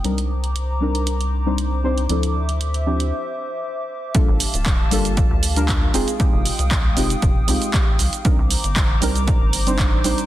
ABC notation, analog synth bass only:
X:1
M:4/4
L:1/16
Q:"Swing 16ths" 1/4=117
K:Gm
V:1 name="Analog synth bass" clef=bass
C,,16 | D,,8 z8 | z G,,, z D,,,3 G,,,3 D,,4- D,, F,,, z | z F,,, z C,,3 F,,, z F,,, z C,, z3 C,, z |
z C,, z G,,,3 C,,3 G,,,4- G,,, B,,, z |]